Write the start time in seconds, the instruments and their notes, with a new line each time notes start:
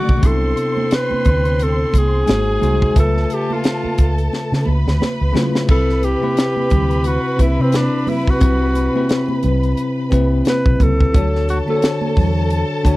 Already playing: tine electric piano C#3 D3 A3 F#4, alto saxophone F#4, string section D5 D6
0.09 fingered electric bass B1, kick
0.21 fingered electric bass C2, tine electric piano C3 B3 D4 E4, string section C4 C6, kick, closed hi-hat, muted conga, low conga
0.26 alto saxophone A4
0.57 closed hi-hat
0.77 high conga
0.91 alto saxophone B4, snare, closed hi-hat
1.10 muted fingered electric bass stroke, high conga
1.25 fingered electric bass D2, kick, closed hi-hat, muted conga
1.45 closed hi-hat
1.59 alto saxophone A4, closed hi-hat
1.93 fingered electric bass C2, kick, closed hi-hat, muted conga, high conga
1.98 alto saxophone G#4
2.26 fingered electric bass G#1, tine electric piano G#3 D#4 F#4, string section G#4 G#5, snare, closed hi-hat, muted conga, high conga
2.30 tine electric piano C5
2.60 fingered electric bass C2, tine electric piano G#3 D#4 F#4 C5, closed hi-hat, muted conga, high conga, low conga
2.82 kick
2.94 fingered electric bass C#2, tine electric piano C#3 A3 F4 B4 E5, string section A4 A5, kick, closed hi-hat, muted conga, low conga
2.99 alto saxophone A4
3.17 snare
3.30 alto saxophone G4, closed hi-hat
3.50 alto saxophone F4, high conga
3.64 snare, closed hi-hat, muted conga
3.83 muted fingered electric bass stroke, high conga
3.98 fingered electric bass C#2, kick, closed hi-hat
4.18 closed hi-hat
4.33 snare, muted conga
4.52 fingered electric bass C#3, snare
4.66 fingered electric bass C#2, string section B4 B5, muted conga, high conga
4.87 fingered electric bass D2, snare
5.01 muted fingered electric bass stroke, snare, muted conga, high conga
5.21 fingered electric bass C#2
5.32 tine electric piano C#3 A3 E4 F4 B4, fingered electric bass C#3, snare, muted conga, high conga, low conga
5.55 snare
5.66 fingered electric bass C2, tine electric piano C3 C4 E4 B4, string section B4 B5, kick, crash, muted conga, low conga
5.70 alto saxophone A4
5.89 snare
6.02 alto saxophone G4, closed hi-hat, muted conga
6.21 tine electric piano C3 C4 E4 B4, high conga
6.37 snare, closed hi-hat, muted conga
6.56 high conga
6.70 fingered electric bass D2, kick, closed hi-hat, low conga
6.91 closed hi-hat
7.04 alto saxophone F#4, closed hi-hat, muted conga
7.37 fingered electric bass C2, tine electric piano C3 C4 E4 B4, kick, closed hi-hat, high conga
7.41 alto saxophone E4
7.59 fingered electric bass C3, alto saxophone C4
7.72 alto saxophone D4, snare, closed hi-hat, muted conga, high conga
8.07 alto saxophone E4, open hi-hat, muted conga, high conga, low conga
8.27 alto saxophone F#4, kick
8.39 fingered electric bass C2, tine electric piano C3 C4 E4 B4, kick, closed hi-hat, muted conga, low conga
8.75 closed hi-hat, muted conga
8.93 tine electric piano C3 C4 E4 B4, high conga
9.09 snare, closed hi-hat, muted conga
9.28 high conga
9.43 fingered electric bass C2, closed hi-hat, muted conga, low conga
9.63 closed hi-hat
9.77 closed hi-hat
10.10 fingered electric bass C2, tine electric piano C3 C4 E4 B4, kick, closed hi-hat, muted conga, high conga
10.45 snare, closed hi-hat, muted conga, high conga
10.49 alto saxophone B4
10.66 fingered electric bass B1, kick
10.80 fingered electric bass C#2, alto saxophone A4, kick, closed hi-hat, muted conga, high conga, low conga
11.00 kick
11.12 fingered electric bass D2, tine electric piano D3 D4 F#4 C#5, string section A4 A5, kick, closed hi-hat, muted conga, low conga
11.35 snare
11.48 alto saxophone F#4, closed hi-hat, muted conga
11.67 tine electric piano D3 D4 F#4 C5, alto saxophone A4, high conga
11.77 tine electric piano C#5
11.82 snare, closed hi-hat
12.01 high conga
12.16 fingered electric bass E2, kick, open hi-hat, muted conga, low conga
12.50 closed hi-hat
12.83 fingered electric bass D2, tine electric piano D3 D4 F#4 C#5, kick, closed hi-hat, high conga